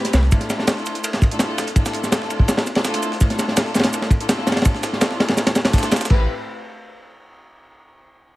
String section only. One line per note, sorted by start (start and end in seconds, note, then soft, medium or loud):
0.00 0.30 A3 medium
0.00 0.30 C4 medium
0.00 0.30 E4 medium
0.00 0.30 G4 medium
0.00 0.30 B4 medium
0.32 1.20 A3 medium
0.32 1.20 D4 medium
0.32 1.20 E4 medium
0.32 1.20 F4 medium
0.32 1.20 A4 medium
1.32 1.39 A3 medium
1.32 1.39 D4 medium
1.32 1.39 E4 medium
1.32 1.39 F4 medium
1.32 1.39 A4 medium
1.40 1.74 A3 medium
1.40 1.74 D4 medium
1.40 1.74 E4 medium
1.40 1.74 F4 medium
1.40 1.74 A4 medium
1.76 2.65 A3 medium
1.76 2.65 D4 medium
1.76 2.65 E4 medium
1.76 2.65 F4 medium
1.76 2.65 A4 medium
2.76 2.83 A3 medium
2.76 2.83 D4 medium
2.76 2.83 E4 medium
2.76 2.83 F4 medium
2.76 2.83 A4 medium
2.85 3.19 A3 medium
2.85 3.19 D4 medium
2.85 3.19 E4 medium
2.85 3.19 F4 medium
2.85 3.19 A4 medium
3.20 4.09 A3 medium
3.20 4.09 D4 medium
3.20 4.09 E4 medium
3.20 4.09 F4 medium
3.20 4.09 A4 medium
4.20 4.28 A3 medium
4.20 4.28 D4 medium
4.20 4.28 E4 medium
4.20 4.28 F4 medium
4.20 4.28 A4 medium
4.29 4.63 A3 medium
4.29 4.63 D4 medium
4.29 4.63 E4 medium
4.29 4.63 F4 medium
4.29 4.63 A4 medium
4.65 5.53 A3 medium
4.65 5.53 D4 medium
4.65 5.53 E4 medium
4.65 5.53 F4 medium
4.65 5.53 A4 medium
5.65 6.08 A3 medium
5.65 6.08 D4 medium
5.65 6.08 E4 medium
5.65 6.08 F4 medium
5.65 6.08 A4 medium
6.10 6.23 A3 medium
6.10 6.23 C4 medium
6.10 6.23 E4 medium
6.10 6.23 G4 medium
6.10 6.23 B4 medium